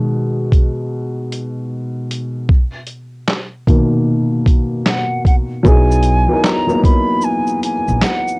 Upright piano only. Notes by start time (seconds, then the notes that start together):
Already playing: B2 D#3 G#3
3.68 B2 D#3 A#3
5.63 F#3 B3 D#4 E4
5.68 G#4
6.28 F#3 B3 D#4 E4
6.33 A#4
6.67 F#3 B3 D#4 E4
6.71 A#3